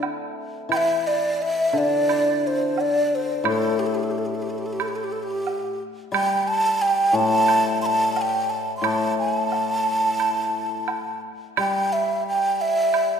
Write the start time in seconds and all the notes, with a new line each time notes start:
Already playing: E4 A4
0.03 high woodblock, low woodblock
0.69 E3 G5, high woodblock
0.77 E5
1.07 D5
1.42 E5
1.73 D3
1.78 D5
2.09 high woodblock
2.47 C5
2.78 D5, low woodblock
3.15 C5
3.44 A2, high woodblock
3.48 A4
3.79 G4
3.86 A4
3.95 G4
4.03 A4
4.11 G4
4.18 A4
4.26 G4
4.35 A4
4.42 G4
4.50 A4
4.58 G4
4.66 A4
4.73 G4
4.80 A4, high woodblock
4.88 G4
4.96 A4
5.04 G4
5.12 A4
5.23 G4
5.47 low woodblock
6.12 G3 G5, high woodblock
6.48 A5
6.82 G5
7.13 A2 A5
7.48 high woodblock
7.82 C6
7.86 A5
8.16 A5, low woodblock
8.21 G5
8.50 A5
8.77 C6
8.82 A2 A5, high woodblock
9.19 G#5
9.38 A5
9.52 low woodblock
10.20 high woodblock
10.88 high woodblock, low woodblock
11.57 G3 G5, high woodblock
11.93 E5
12.27 G5
12.61 E5
12.94 high woodblock